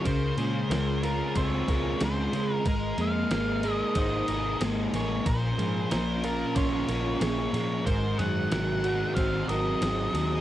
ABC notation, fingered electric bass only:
X:1
M:4/4
L:1/8
Q:1/4=92
K:Ab
V:1 name="Fingered electric bass" clef=bass
D,, B,, D,,2 D,, D,, D,, D, | A,,, F,, A,,,2 A,,, A,,, A,,, =A,,, | B,,, A,, B,,,2 B,,, B,,, B,,, B,, | A,,, _G,, A,,,2 A,,, A,,, A,,, E,, |]